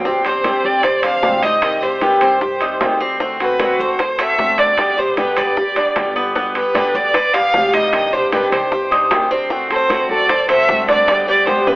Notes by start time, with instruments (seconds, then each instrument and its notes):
Already playing: upright bass G1
0.05 steel-string acoustic guitar C3 G3 C4 D4 G4, cuban tres C4, high bongo, high conga
0.24 steel-string acoustic guitar C4 D4 G4, nylon-string guitar G4, violin C5, high bongo, high conga, high timbale
0.44 steel-string acoustic guitar C3 G3 C4 D4 G4, cuban tres G4, high bongo, high conga, high timbale
0.64 upright bass D2, nylon-string guitar G4, violin D5, high bongo, high conga
0.83 cuban tres C5, muted steel-string acoustic guitar stroke, high bongo, high conga, high timbale
1.03 steel-string acoustic guitar C4 D4 G4, cuban tres C5, nylon-string guitar D5, violin F5, high conga, high timbale
1.23 upright bass C2, steel-string acoustic guitar C3 G3 C4 D4 G4, high bongo, low bongo, high conga, low timbale
1.43 steel-string acoustic guitar C4 D4 G4, cuban tres D#4, nylon-string guitar C5, violin D#5, high bongo, high conga, high timbale
1.62 steel-string acoustic guitar C3 D#3 G3 C4 G4, high bongo, high timbale
1.81 steel-string acoustic guitar G3 C4 G4, cuban tres G4, nylon-string guitar G#4, violin C5, high conga
2.00 steel-string acoustic guitar C3 D#3 G3 C4 G4, nylon-string guitar G4, violin B4, high bongo, high conga, high timbale
2.21 upright bass G2, nylon-string guitar G4, cuban tres C5, violin C5, high bongo, high conga, high timbale
2.41 cuban tres G4, muted steel-string acoustic guitar stroke, high bongo, high conga
2.61 steel-string acoustic guitar G3 C4 G4, cuban tres D#4, high bongo, high conga, high timbale
2.80 upright bass D2, steel-string acoustic guitar C3 D#3 G3 C4 G4, high bongo, low bongo, high conga, high timbale, low timbale
3.00 steel-string acoustic guitar G3 C4 G4, cuban tres C4, high bongo
3.20 steel-string acoustic guitar D3 A3 C4 F#4, cuban tres C4, high bongo, high conga
3.40 steel-string acoustic guitar A3 C4 F#4, nylon-string guitar F#4, violin B4, high bongo, high conga, high timbale
3.59 steel-string acoustic guitar D3 A3 C4 F#4, cuban tres F#4, high bongo, high conga, high timbale
3.79 upright bass D2, nylon-string guitar A4, violin C5, high bongo, high conga
3.99 cuban tres C5, muted steel-string acoustic guitar stroke, high bongo, high conga, high timbale
4.19 steel-string acoustic guitar A3 C4 F#4, cuban tres A4, nylon-string guitar C5, violin E5, high conga, high timbale
4.38 upright bass G1, steel-string acoustic guitar D3 A3 C4 F#4, high bongo, low bongo, high conga
4.57 steel-string acoustic guitar A3 C4 F#4, cuban tres D4, nylon-string guitar B4, violin D5, high bongo, high conga, high timbale
4.77 steel-string acoustic guitar B2 D3 G3 B3 G4, high bongo, high timbale
4.97 steel-string acoustic guitar G3 B3 G4, cuban tres G4, nylon-string guitar G#4, violin C5, high conga
5.17 steel-string acoustic guitar B2 D3 G3 B3 G4, nylon-string guitar G4, violin B4, high bongo, high conga, high timbale
5.37 upright bass D2, cuban tres B4, nylon-string guitar B4, violin D5, high bongo, high conga, high timbale
5.57 cuban tres G4, muted steel-string acoustic guitar stroke, high bongo, high conga
5.76 steel-string acoustic guitar G3 B3 G4, cuban tres D4, high bongo, high conga, high timbale
5.96 upright bass G1, steel-string acoustic guitar B2 D3 G3 B3 G4, high bongo, low bongo, high conga, high timbale
6.16 steel-string acoustic guitar G3 B3 G4, cuban tres B3, high bongo
6.35 steel-string acoustic guitar B2 D3 G3 B3 G4, cuban tres B3, high bongo, high conga
6.55 steel-string acoustic guitar G3 B3 G4, nylon-string guitar G4, violin B4, high bongo, high conga, high timbale
6.75 steel-string acoustic guitar B2 D3 G3 B3 G4, cuban tres D4, high bongo, high conga, high timbale
6.94 upright bass D2, nylon-string guitar B4, violin D5, high bongo, high conga
7.14 cuban tres B4, muted steel-string acoustic guitar stroke, high bongo, high conga, high timbale
7.34 steel-string acoustic guitar G3 B3 G4, cuban tres G4, nylon-string guitar D5, violin F5, high conga, high timbale
7.53 upright bass C2, steel-string acoustic guitar B2 D3 G3 B3 G4, high bongo, low bongo, high conga, low timbale
7.73 steel-string acoustic guitar G3 B3 G4, cuban tres D#4, nylon-string guitar C5, violin D#5, high bongo, high conga, high timbale
7.92 steel-string acoustic guitar C3 D#3 G3 D4 G4, high bongo, high conga, high timbale
8.12 steel-string acoustic guitar G3 D4 G4, cuban tres G4, nylon-string guitar G#4, violin C5, high conga
8.32 steel-string acoustic guitar C3 D#3 G3 D4 G4, nylon-string guitar G4, violin B4, high bongo, high conga, high timbale
8.52 upright bass C2, nylon-string guitar G4, cuban tres C5, violin C5, high bongo, high conga, high timbale
8.71 cuban tres G4, muted steel-string acoustic guitar stroke, high bongo, high conga
8.91 steel-string acoustic guitar G3 D4 G4, cuban tres D#4, high bongo, high conga, high timbale
9.11 upright bass D2, steel-string acoustic guitar C3 D#3 G3 D4 G4, high bongo, low bongo, high conga, high timbale, low timbale
9.30 steel-string acoustic guitar G3 D4 G4, cuban tres C4, high bongo
9.50 steel-string acoustic guitar D3 A3 C4 F#4, cuban tres C4, high bongo, high conga
9.70 steel-string acoustic guitar A3 C4 F#4, nylon-string guitar A4, violin C5, high bongo, high conga, high timbale
9.89 steel-string acoustic guitar D3 A3 C4 F#4, cuban tres F#4, high bongo, high conga, high timbale
10.09 upright bass F#2, nylon-string guitar A4, violin D5, high bongo, high conga
10.29 cuban tres C5, muted steel-string acoustic guitar stroke, high bongo, high conga, high timbale
10.48 steel-string acoustic guitar A3 C4 F#4, cuban tres A4, nylon-string guitar C5, violin E5, high conga, high timbale
10.68 upright bass G2, steel-string acoustic guitar D3 A3 C4 F#4, high bongo, low bongo, high conga
10.88 steel-string acoustic guitar A3 C4 F#4, cuban tres D4, nylon-string guitar B4, violin D5, high bongo, high conga, high timbale
11.07 steel-string acoustic guitar B2 D3 G3 B3 G4, high bongo, high conga, high timbale
11.27 steel-string acoustic guitar G3 B3 G4, cuban tres G4, nylon-string guitar B4, violin D5, high conga
11.47 steel-string acoustic guitar B2 D3 G3 B3 G4, nylon-string guitar G4, violin C5, high bongo, high conga, high timbale
11.67 upright bass B2, nylon-string guitar G4, cuban tres B4, violin B4, high bongo, high conga, high timbale